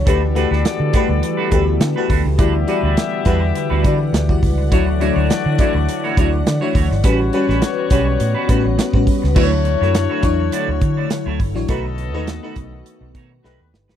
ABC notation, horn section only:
X:1
M:4/4
L:1/8
Q:"Swing 16ths" 1/4=103
K:D
V:1 name="Horn section"
[B,Ad]6- [B,Ad] z | [B,Ge]6- [B,Ge] z | [A,Fd]6- [A,Fd] z | [G,Fc]6- [G,Fc] z |
[A,Fc]6- [A,Fc] z | [B,A^d]4- [B,Ad] z [G,FB] z |]